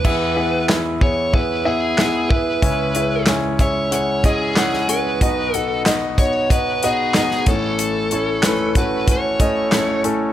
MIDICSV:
0, 0, Header, 1, 4, 480
1, 0, Start_track
1, 0, Key_signature, 4, "major"
1, 0, Tempo, 645161
1, 34, Time_signature, 4, 2, 24, 8
1, 7683, End_track
2, 0, Start_track
2, 0, Title_t, "Lead electric guitar"
2, 0, Program_c, 0, 29
2, 0, Note_on_c, 0, 71, 78
2, 486, Note_off_c, 0, 71, 0
2, 763, Note_on_c, 0, 73, 77
2, 998, Note_on_c, 0, 71, 80
2, 1006, Note_off_c, 0, 73, 0
2, 1233, Note_off_c, 0, 71, 0
2, 1236, Note_on_c, 0, 68, 67
2, 1713, Note_off_c, 0, 68, 0
2, 1716, Note_on_c, 0, 71, 66
2, 2406, Note_off_c, 0, 71, 0
2, 2687, Note_on_c, 0, 73, 80
2, 2904, Note_off_c, 0, 73, 0
2, 2932, Note_on_c, 0, 73, 84
2, 3147, Note_off_c, 0, 73, 0
2, 3168, Note_on_c, 0, 68, 70
2, 3639, Note_off_c, 0, 68, 0
2, 3642, Note_on_c, 0, 71, 66
2, 4125, Note_off_c, 0, 71, 0
2, 4125, Note_on_c, 0, 69, 66
2, 4329, Note_off_c, 0, 69, 0
2, 4604, Note_on_c, 0, 73, 77
2, 4823, Note_off_c, 0, 73, 0
2, 4842, Note_on_c, 0, 71, 80
2, 5085, Note_off_c, 0, 71, 0
2, 5094, Note_on_c, 0, 68, 73
2, 5569, Note_off_c, 0, 68, 0
2, 5572, Note_on_c, 0, 69, 78
2, 6532, Note_off_c, 0, 69, 0
2, 6535, Note_on_c, 0, 71, 71
2, 6771, Note_off_c, 0, 71, 0
2, 6781, Note_on_c, 0, 73, 76
2, 7458, Note_off_c, 0, 73, 0
2, 7683, End_track
3, 0, Start_track
3, 0, Title_t, "Grand piano"
3, 0, Program_c, 1, 0
3, 0, Control_c, 1, 64, 127
3, 34, Note_on_c, 1, 76, 85
3, 35, Note_on_c, 1, 40, 49
3, 35, Note_on_c, 1, 52, 48
3, 36, Note_on_c, 1, 64, 70
3, 37, Note_on_c, 1, 59, 72
3, 37, Note_on_c, 1, 68, 64
3, 45, Control_c, 1, 64, 0
3, 165, Control_c, 1, 64, 127
3, 224, Note_off_c, 1, 76, 0
3, 225, Note_off_c, 1, 59, 0
3, 225, Note_off_c, 1, 64, 0
3, 225, Note_off_c, 1, 68, 0
3, 270, Note_on_c, 1, 64, 54
3, 271, Note_on_c, 1, 68, 51
3, 274, Note_on_c, 1, 59, 58
3, 275, Note_on_c, 1, 76, 67
3, 462, Note_off_c, 1, 64, 0
3, 462, Note_off_c, 1, 68, 0
3, 464, Note_off_c, 1, 59, 0
3, 464, Note_off_c, 1, 76, 0
3, 515, Note_on_c, 1, 64, 59
3, 517, Note_on_c, 1, 59, 65
3, 517, Note_on_c, 1, 76, 68
3, 518, Note_on_c, 1, 68, 55
3, 704, Note_off_c, 1, 64, 0
3, 705, Note_off_c, 1, 59, 0
3, 705, Note_off_c, 1, 76, 0
3, 706, Note_off_c, 1, 68, 0
3, 752, Note_on_c, 1, 73, 61
3, 754, Note_on_c, 1, 68, 54
3, 755, Note_on_c, 1, 59, 61
3, 758, Note_on_c, 1, 64, 57
3, 943, Note_off_c, 1, 73, 0
3, 944, Note_off_c, 1, 59, 0
3, 944, Note_off_c, 1, 68, 0
3, 946, Note_off_c, 1, 64, 0
3, 992, Note_on_c, 1, 76, 57
3, 993, Note_on_c, 1, 68, 49
3, 994, Note_on_c, 1, 64, 47
3, 995, Note_on_c, 1, 59, 56
3, 1183, Note_off_c, 1, 64, 0
3, 1183, Note_off_c, 1, 68, 0
3, 1183, Note_off_c, 1, 76, 0
3, 1184, Note_off_c, 1, 59, 0
3, 1228, Note_on_c, 1, 59, 75
3, 1230, Note_on_c, 1, 76, 80
3, 1231, Note_on_c, 1, 64, 71
3, 1231, Note_on_c, 1, 68, 69
3, 1421, Note_off_c, 1, 59, 0
3, 1422, Note_off_c, 1, 64, 0
3, 1422, Note_off_c, 1, 68, 0
3, 1422, Note_off_c, 1, 76, 0
3, 1475, Note_on_c, 1, 64, 69
3, 1477, Note_on_c, 1, 68, 65
3, 1478, Note_on_c, 1, 59, 77
3, 1480, Note_on_c, 1, 76, 85
3, 1664, Note_off_c, 1, 64, 0
3, 1666, Note_off_c, 1, 59, 0
3, 1666, Note_off_c, 1, 68, 0
3, 1667, Note_off_c, 1, 76, 0
3, 1713, Note_on_c, 1, 68, 57
3, 1715, Note_on_c, 1, 59, 59
3, 1715, Note_on_c, 1, 64, 53
3, 1715, Note_on_c, 1, 76, 60
3, 1904, Note_off_c, 1, 59, 0
3, 1904, Note_off_c, 1, 64, 0
3, 1904, Note_off_c, 1, 68, 0
3, 1904, Note_off_c, 1, 76, 0
3, 1925, Note_off_c, 1, 52, 0
3, 1926, Note_off_c, 1, 40, 0
3, 1949, Note_on_c, 1, 68, 68
3, 1950, Note_on_c, 1, 49, 52
3, 1950, Note_on_c, 1, 61, 78
3, 1951, Note_on_c, 1, 64, 70
3, 1951, Note_on_c, 1, 76, 82
3, 1952, Note_on_c, 1, 37, 48
3, 1964, Control_c, 1, 64, 0
3, 2073, Control_c, 1, 64, 127
3, 2142, Note_off_c, 1, 61, 0
3, 2142, Note_off_c, 1, 64, 0
3, 2142, Note_off_c, 1, 68, 0
3, 2142, Note_off_c, 1, 76, 0
3, 2200, Note_on_c, 1, 64, 54
3, 2200, Note_on_c, 1, 76, 68
3, 2201, Note_on_c, 1, 61, 64
3, 2201, Note_on_c, 1, 68, 57
3, 2387, Note_off_c, 1, 61, 0
3, 2387, Note_off_c, 1, 64, 0
3, 2387, Note_off_c, 1, 68, 0
3, 2387, Note_off_c, 1, 76, 0
3, 2440, Note_on_c, 1, 73, 71
3, 2441, Note_on_c, 1, 61, 68
3, 2441, Note_on_c, 1, 68, 59
3, 2442, Note_on_c, 1, 64, 61
3, 2627, Note_off_c, 1, 61, 0
3, 2627, Note_off_c, 1, 68, 0
3, 2627, Note_off_c, 1, 73, 0
3, 2628, Note_off_c, 1, 64, 0
3, 2679, Note_on_c, 1, 61, 57
3, 2679, Note_on_c, 1, 68, 54
3, 2680, Note_on_c, 1, 64, 53
3, 2683, Note_on_c, 1, 76, 71
3, 2866, Note_off_c, 1, 61, 0
3, 2867, Note_off_c, 1, 64, 0
3, 2867, Note_off_c, 1, 68, 0
3, 2868, Note_off_c, 1, 76, 0
3, 2914, Note_on_c, 1, 78, 62
3, 2915, Note_on_c, 1, 61, 59
3, 2916, Note_on_c, 1, 64, 50
3, 2916, Note_on_c, 1, 68, 54
3, 3104, Note_off_c, 1, 78, 0
3, 3105, Note_off_c, 1, 61, 0
3, 3105, Note_off_c, 1, 64, 0
3, 3105, Note_off_c, 1, 68, 0
3, 3162, Note_on_c, 1, 61, 73
3, 3162, Note_on_c, 1, 64, 69
3, 3163, Note_on_c, 1, 75, 84
3, 3165, Note_on_c, 1, 68, 69
3, 3348, Note_off_c, 1, 61, 0
3, 3348, Note_off_c, 1, 64, 0
3, 3348, Note_off_c, 1, 75, 0
3, 3350, Note_off_c, 1, 68, 0
3, 3400, Note_on_c, 1, 61, 76
3, 3403, Note_on_c, 1, 68, 65
3, 3404, Note_on_c, 1, 64, 69
3, 3405, Note_on_c, 1, 78, 88
3, 3587, Note_off_c, 1, 61, 0
3, 3588, Note_off_c, 1, 68, 0
3, 3589, Note_off_c, 1, 64, 0
3, 3589, Note_off_c, 1, 78, 0
3, 3636, Note_on_c, 1, 64, 53
3, 3636, Note_on_c, 1, 68, 52
3, 3640, Note_on_c, 1, 61, 58
3, 3640, Note_on_c, 1, 73, 67
3, 3825, Note_off_c, 1, 64, 0
3, 3825, Note_off_c, 1, 68, 0
3, 3827, Note_off_c, 1, 61, 0
3, 3827, Note_off_c, 1, 73, 0
3, 3843, Note_off_c, 1, 49, 0
3, 3844, Note_off_c, 1, 37, 0
3, 3880, Note_on_c, 1, 63, 69
3, 3880, Note_on_c, 1, 75, 83
3, 3882, Note_on_c, 1, 35, 53
3, 3882, Note_on_c, 1, 47, 52
3, 3882, Note_on_c, 1, 59, 81
3, 3883, Note_on_c, 1, 66, 71
3, 3884, Control_c, 1, 64, 0
3, 3998, Control_c, 1, 64, 127
3, 4067, Note_off_c, 1, 63, 0
3, 4067, Note_off_c, 1, 75, 0
3, 4068, Note_off_c, 1, 59, 0
3, 4068, Note_off_c, 1, 66, 0
3, 4127, Note_on_c, 1, 59, 60
3, 4128, Note_on_c, 1, 63, 54
3, 4128, Note_on_c, 1, 78, 68
3, 4129, Note_on_c, 1, 66, 56
3, 4310, Note_off_c, 1, 59, 0
3, 4311, Note_off_c, 1, 63, 0
3, 4311, Note_off_c, 1, 66, 0
3, 4311, Note_off_c, 1, 78, 0
3, 4358, Note_on_c, 1, 66, 63
3, 4360, Note_on_c, 1, 63, 63
3, 4360, Note_on_c, 1, 75, 77
3, 4361, Note_on_c, 1, 59, 67
3, 4546, Note_off_c, 1, 66, 0
3, 4547, Note_off_c, 1, 59, 0
3, 4547, Note_off_c, 1, 63, 0
3, 4547, Note_off_c, 1, 75, 0
3, 4601, Note_on_c, 1, 66, 57
3, 4604, Note_on_c, 1, 73, 69
3, 4606, Note_on_c, 1, 59, 58
3, 4607, Note_on_c, 1, 63, 55
3, 4787, Note_off_c, 1, 66, 0
3, 4789, Note_off_c, 1, 73, 0
3, 4790, Note_off_c, 1, 59, 0
3, 4790, Note_off_c, 1, 63, 0
3, 4842, Note_on_c, 1, 63, 55
3, 4843, Note_on_c, 1, 66, 53
3, 4844, Note_on_c, 1, 59, 58
3, 4845, Note_on_c, 1, 75, 64
3, 5028, Note_off_c, 1, 59, 0
3, 5028, Note_off_c, 1, 63, 0
3, 5028, Note_off_c, 1, 66, 0
3, 5029, Note_off_c, 1, 75, 0
3, 5085, Note_on_c, 1, 66, 74
3, 5087, Note_on_c, 1, 59, 78
3, 5087, Note_on_c, 1, 63, 70
3, 5089, Note_on_c, 1, 75, 90
3, 5269, Note_off_c, 1, 66, 0
3, 5270, Note_off_c, 1, 59, 0
3, 5270, Note_off_c, 1, 63, 0
3, 5271, Note_off_c, 1, 75, 0
3, 5325, Note_on_c, 1, 59, 74
3, 5325, Note_on_c, 1, 63, 70
3, 5325, Note_on_c, 1, 66, 68
3, 5325, Note_on_c, 1, 75, 85
3, 5509, Note_off_c, 1, 59, 0
3, 5509, Note_off_c, 1, 63, 0
3, 5509, Note_off_c, 1, 66, 0
3, 5509, Note_off_c, 1, 75, 0
3, 5528, Note_off_c, 1, 35, 0
3, 5528, Note_off_c, 1, 47, 0
3, 5562, Note_on_c, 1, 64, 58
3, 5563, Note_on_c, 1, 73, 68
3, 5564, Note_on_c, 1, 33, 53
3, 5564, Note_on_c, 1, 57, 65
3, 5564, Note_on_c, 1, 61, 59
3, 5565, Control_c, 1, 64, 0
3, 5565, Note_on_c, 1, 45, 49
3, 5708, Control_c, 1, 64, 127
3, 5942, Note_off_c, 1, 64, 0
3, 5943, Note_off_c, 1, 57, 0
3, 5943, Note_off_c, 1, 61, 0
3, 5943, Note_off_c, 1, 73, 0
3, 6042, Note_on_c, 1, 61, 55
3, 6043, Note_on_c, 1, 57, 59
3, 6045, Note_on_c, 1, 64, 57
3, 6045, Note_on_c, 1, 73, 66
3, 6228, Note_off_c, 1, 57, 0
3, 6228, Note_off_c, 1, 61, 0
3, 6229, Note_off_c, 1, 64, 0
3, 6229, Note_off_c, 1, 73, 0
3, 6278, Note_on_c, 1, 71, 69
3, 6280, Note_on_c, 1, 57, 68
3, 6282, Note_on_c, 1, 64, 60
3, 6283, Note_on_c, 1, 61, 58
3, 6466, Note_off_c, 1, 57, 0
3, 6466, Note_off_c, 1, 71, 0
3, 6468, Note_off_c, 1, 61, 0
3, 6468, Note_off_c, 1, 64, 0
3, 6522, Note_on_c, 1, 57, 60
3, 6525, Note_on_c, 1, 66, 68
3, 6527, Note_on_c, 1, 61, 55
3, 6528, Note_on_c, 1, 64, 56
3, 6708, Note_off_c, 1, 57, 0
3, 6709, Note_off_c, 1, 66, 0
3, 6710, Note_off_c, 1, 61, 0
3, 6710, Note_off_c, 1, 64, 0
3, 6755, Note_on_c, 1, 61, 48
3, 6756, Note_on_c, 1, 66, 60
3, 6757, Note_on_c, 1, 64, 50
3, 6759, Note_on_c, 1, 57, 55
3, 6944, Note_off_c, 1, 61, 0
3, 6944, Note_off_c, 1, 66, 0
3, 6945, Note_off_c, 1, 64, 0
3, 6946, Note_off_c, 1, 57, 0
3, 6995, Note_on_c, 1, 57, 73
3, 6996, Note_on_c, 1, 64, 66
3, 6998, Note_on_c, 1, 61, 66
3, 6998, Note_on_c, 1, 75, 83
3, 7184, Note_off_c, 1, 57, 0
3, 7184, Note_off_c, 1, 64, 0
3, 7185, Note_off_c, 1, 61, 0
3, 7185, Note_off_c, 1, 75, 0
3, 7231, Note_on_c, 1, 57, 75
3, 7235, Note_on_c, 1, 61, 67
3, 7236, Note_on_c, 1, 64, 70
3, 7236, Note_on_c, 1, 73, 79
3, 7422, Note_off_c, 1, 57, 0
3, 7423, Note_off_c, 1, 61, 0
3, 7424, Note_off_c, 1, 64, 0
3, 7424, Note_off_c, 1, 73, 0
3, 7449, Note_off_c, 1, 33, 0
3, 7449, Note_off_c, 1, 45, 0
3, 7469, Note_on_c, 1, 57, 70
3, 7472, Note_on_c, 1, 61, 65
3, 7474, Note_on_c, 1, 64, 64
3, 7474, Note_on_c, 1, 69, 79
3, 7660, Note_off_c, 1, 57, 0
3, 7662, Note_off_c, 1, 61, 0
3, 7663, Note_off_c, 1, 64, 0
3, 7663, Note_off_c, 1, 69, 0
3, 7683, End_track
4, 0, Start_track
4, 0, Title_t, "Drums"
4, 35, Note_on_c, 9, 36, 78
4, 35, Note_on_c, 9, 49, 69
4, 109, Note_off_c, 9, 36, 0
4, 109, Note_off_c, 9, 49, 0
4, 514, Note_on_c, 9, 39, 64
4, 516, Note_on_c, 9, 38, 86
4, 589, Note_off_c, 9, 39, 0
4, 591, Note_off_c, 9, 38, 0
4, 754, Note_on_c, 9, 36, 74
4, 829, Note_off_c, 9, 36, 0
4, 994, Note_on_c, 9, 36, 73
4, 1068, Note_off_c, 9, 36, 0
4, 1474, Note_on_c, 9, 39, 60
4, 1476, Note_on_c, 9, 38, 78
4, 1548, Note_off_c, 9, 39, 0
4, 1550, Note_off_c, 9, 38, 0
4, 1715, Note_on_c, 9, 36, 75
4, 1789, Note_off_c, 9, 36, 0
4, 1953, Note_on_c, 9, 36, 77
4, 1954, Note_on_c, 9, 42, 71
4, 2027, Note_off_c, 9, 36, 0
4, 2028, Note_off_c, 9, 42, 0
4, 2193, Note_on_c, 9, 42, 54
4, 2267, Note_off_c, 9, 42, 0
4, 2428, Note_on_c, 9, 39, 65
4, 2430, Note_on_c, 9, 38, 88
4, 2432, Note_on_c, 9, 42, 73
4, 2503, Note_off_c, 9, 39, 0
4, 2504, Note_off_c, 9, 38, 0
4, 2506, Note_off_c, 9, 42, 0
4, 2672, Note_on_c, 9, 36, 76
4, 2672, Note_on_c, 9, 42, 51
4, 2747, Note_off_c, 9, 36, 0
4, 2747, Note_off_c, 9, 42, 0
4, 2917, Note_on_c, 9, 42, 81
4, 2992, Note_off_c, 9, 42, 0
4, 3153, Note_on_c, 9, 36, 69
4, 3155, Note_on_c, 9, 42, 58
4, 3228, Note_off_c, 9, 36, 0
4, 3229, Note_off_c, 9, 42, 0
4, 3395, Note_on_c, 9, 39, 62
4, 3396, Note_on_c, 9, 38, 82
4, 3400, Note_on_c, 9, 42, 62
4, 3469, Note_off_c, 9, 39, 0
4, 3471, Note_off_c, 9, 38, 0
4, 3474, Note_off_c, 9, 42, 0
4, 3520, Note_on_c, 9, 38, 28
4, 3595, Note_off_c, 9, 38, 0
4, 3637, Note_on_c, 9, 42, 59
4, 3712, Note_off_c, 9, 42, 0
4, 3877, Note_on_c, 9, 36, 78
4, 3879, Note_on_c, 9, 42, 73
4, 3952, Note_off_c, 9, 36, 0
4, 3953, Note_off_c, 9, 42, 0
4, 4121, Note_on_c, 9, 42, 51
4, 4195, Note_off_c, 9, 42, 0
4, 4359, Note_on_c, 9, 39, 63
4, 4361, Note_on_c, 9, 38, 79
4, 4362, Note_on_c, 9, 42, 72
4, 4433, Note_off_c, 9, 39, 0
4, 4435, Note_off_c, 9, 38, 0
4, 4437, Note_off_c, 9, 42, 0
4, 4597, Note_on_c, 9, 36, 68
4, 4599, Note_on_c, 9, 42, 50
4, 4672, Note_off_c, 9, 36, 0
4, 4673, Note_off_c, 9, 42, 0
4, 4839, Note_on_c, 9, 36, 82
4, 4842, Note_on_c, 9, 42, 78
4, 4913, Note_off_c, 9, 36, 0
4, 4917, Note_off_c, 9, 42, 0
4, 5079, Note_on_c, 9, 42, 60
4, 5153, Note_off_c, 9, 42, 0
4, 5313, Note_on_c, 9, 39, 58
4, 5315, Note_on_c, 9, 38, 82
4, 5318, Note_on_c, 9, 42, 63
4, 5388, Note_off_c, 9, 39, 0
4, 5389, Note_off_c, 9, 38, 0
4, 5393, Note_off_c, 9, 42, 0
4, 5438, Note_on_c, 9, 38, 25
4, 5512, Note_off_c, 9, 38, 0
4, 5553, Note_on_c, 9, 42, 56
4, 5556, Note_on_c, 9, 36, 86
4, 5627, Note_off_c, 9, 42, 0
4, 5630, Note_off_c, 9, 36, 0
4, 5794, Note_on_c, 9, 42, 77
4, 5869, Note_off_c, 9, 42, 0
4, 6034, Note_on_c, 9, 42, 55
4, 6108, Note_off_c, 9, 42, 0
4, 6271, Note_on_c, 9, 39, 69
4, 6273, Note_on_c, 9, 38, 84
4, 6275, Note_on_c, 9, 42, 73
4, 6346, Note_off_c, 9, 39, 0
4, 6347, Note_off_c, 9, 38, 0
4, 6349, Note_off_c, 9, 42, 0
4, 6512, Note_on_c, 9, 42, 53
4, 6513, Note_on_c, 9, 36, 74
4, 6587, Note_off_c, 9, 36, 0
4, 6587, Note_off_c, 9, 42, 0
4, 6752, Note_on_c, 9, 36, 78
4, 6752, Note_on_c, 9, 42, 79
4, 6827, Note_off_c, 9, 36, 0
4, 6827, Note_off_c, 9, 42, 0
4, 6992, Note_on_c, 9, 36, 72
4, 6992, Note_on_c, 9, 42, 59
4, 7066, Note_off_c, 9, 36, 0
4, 7066, Note_off_c, 9, 42, 0
4, 7231, Note_on_c, 9, 39, 60
4, 7232, Note_on_c, 9, 38, 80
4, 7236, Note_on_c, 9, 42, 68
4, 7305, Note_off_c, 9, 39, 0
4, 7307, Note_off_c, 9, 38, 0
4, 7310, Note_off_c, 9, 42, 0
4, 7471, Note_on_c, 9, 42, 59
4, 7546, Note_off_c, 9, 42, 0
4, 7683, End_track
0, 0, End_of_file